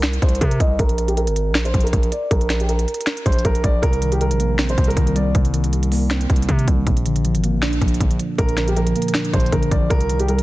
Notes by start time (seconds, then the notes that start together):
Already playing: C2 A#4
0.02 finger snap, snare, closed hi-hat
0.13 closed hi-hat
0.22 C2 C5, kick, closed hi-hat
0.29 closed hi-hat
0.35 closed hi-hat
0.41 C3 A#4, kick, closed hi-hat
0.51 closed hi-hat
0.60 C2 D#5, kick, closed hi-hat
0.79 A#1 A#4, kick, closed hi-hat
0.89 closed hi-hat
0.98 closed hi-hat
1.08 G4, closed hi-hat
1.17 A#4, closed hi-hat
1.27 G#1, closed hi-hat
1.36 closed hi-hat
1.51 A#1, finger snap
1.55 snare, closed hi-hat
1.65 C5, closed hi-hat
1.74 A#1, kick, closed hi-hat
1.80 A#4, closed hi-hat
1.87 closed hi-hat
1.93 A#1, kick, closed hi-hat
2.03 closed hi-hat
2.12 D5, closed hi-hat
2.31 A#1 A#4, kick, closed hi-hat
2.41 closed hi-hat
2.49 finger snap, snare, closed hi-hat
2.60 G4, closed hi-hat
2.69 A#4, closed hi-hat
2.79 closed hi-hat
2.88 closed hi-hat
2.94 closed hi-hat
3.01 closed hi-hat
3.06 finger snap, snare, closed hi-hat
3.17 closed hi-hat
3.26 A#1 C5, kick, closed hi-hat
3.32 closed hi-hat
3.38 closed hi-hat
3.45 A#1 A#4, kick, closed hi-hat
3.55 closed hi-hat
3.63 A#1 D5, kick, closed hi-hat
3.82 C2 C3 A#4, kick, closed hi-hat
3.93 closed hi-hat
4.02 D#3, closed hi-hat
4.12 G4, closed hi-hat
4.21 G3 A#4, closed hi-hat
4.31 A#1, closed hi-hat
4.39 A#3, closed hi-hat
4.58 C4, finger snap, snare, closed hi-hat
4.69 C5, closed hi-hat
4.77 C2 C3, kick, closed hi-hat
4.84 A#4, closed hi-hat
4.90 closed hi-hat
4.97 C2 D#3, kick, closed hi-hat
5.07 closed hi-hat
5.15 G3 D5, closed hi-hat
5.35 C2 C3, kick, closed hi-hat
5.45 closed hi-hat
5.53 D#3, closed hi-hat
5.64 closed hi-hat
5.73 G3, closed hi-hat
5.83 closed hi-hat
5.92 A#3, open hi-hat
6.10 C4, finger snap, snare, closed hi-hat
6.21 closed hi-hat
6.30 C2 C3, kick, closed hi-hat
6.36 closed hi-hat
6.42 closed hi-hat
6.49 C3 D#3, kick, closed hi-hat
6.59 closed hi-hat
6.67 C2 G3, kick, closed hi-hat
6.87 A#1 A#2, kick, closed hi-hat
6.97 closed hi-hat
7.06 D3, closed hi-hat
7.16 closed hi-hat
7.25 F3, closed hi-hat
7.35 G#1, closed hi-hat
7.44 A#3, closed hi-hat
7.58 A#1, finger snap
7.63 D4, snare, closed hi-hat
7.73 closed hi-hat
7.82 A#1 A#2, kick, closed hi-hat
7.88 closed hi-hat
7.94 closed hi-hat
8.00 A#1 D3, kick, closed hi-hat
8.11 closed hi-hat
8.19 F3, closed hi-hat
8.38 A#1 A#2 A#4, kick, closed hi-hat
8.49 closed hi-hat
8.57 D3, finger snap, snare, closed hi-hat
8.68 G4, closed hi-hat
8.76 F3 A#4, closed hi-hat
8.87 closed hi-hat
8.96 A#3, closed hi-hat
9.02 closed hi-hat
9.08 closed hi-hat
9.14 D4, finger snap, snare, closed hi-hat
9.25 closed hi-hat
9.33 A#1 A#2 C5, kick, closed hi-hat
9.40 closed hi-hat
9.46 closed hi-hat
9.52 A#1 D3 A#4, kick, closed hi-hat
9.63 closed hi-hat
9.71 A#1 F3 D5, kick, closed hi-hat
9.90 C2 C3 A#4, kick, closed hi-hat
10.01 closed hi-hat
10.09 D#3, closed hi-hat
10.20 G4, closed hi-hat
10.28 G3 A#4, closed hi-hat
10.38 A#1, closed hi-hat